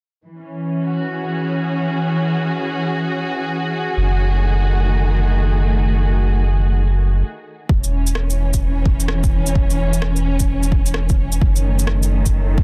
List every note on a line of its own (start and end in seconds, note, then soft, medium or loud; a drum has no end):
0.26 3.98 E3 medium
0.40 4.69 C#4 medium
0.85 7.23 F#4 medium
1.14 7.24 G#4 medium
3.97 7.23 F#1 medium
3.97 7.23 D#3 medium
4.14 7.23 A3 medium
7.69 11.40 E1 medium
7.69 11.41 E3 medium
7.69 kick loud
7.78 12.63 C#4 medium
7.84 shaker soft
8.07 shaker medium
8.15 cross-stick loud
8.30 shaker soft
8.54 kick medium
8.54 shaker medium
8.86 kick loud
9.00 shaker medium
9.08 cross-stick loud
9.24 kick loud
9.24 shaker soft
9.47 shaker medium
9.55 kick loud
9.70 shaker soft
9.94 shaker medium
10.02 cross-stick loud
10.16 shaker soft
10.40 kick medium
10.40 shaker medium
10.63 shaker soft
10.72 kick loud
10.86 shaker medium
10.94 cross-stick loud
11.09 kick loud
11.09 shaker soft
11.32 shaker medium
11.42 12.63 F#1 medium
11.42 12.63 D#3 medium
11.42 kick loud
11.56 shaker soft
11.65 12.63 A3 medium
11.79 shaker medium
11.87 cross-stick loud
12.03 shaker soft
12.26 kick medium
12.26 shaker medium
12.58 kick loud